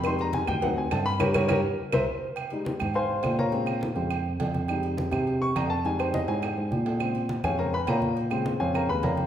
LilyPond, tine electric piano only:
\new Staff \with { instrumentName = "Tine electric piano" } { \clef bass \time 4/4 \key f \minor \tempo 4 = 207 f,4. d,4. g,4 | g,8 g,8 g,8 r4 c,8 r4 | r4. aes,4. bes,4~ | bes,4. f,4. f,4~ |
f,4. c4. f,4~ | f,4. aes,4 aes,8 bes,4~ | bes,4. f,4. bes,4~ | bes,4. f,4 ees,8 f,4 | }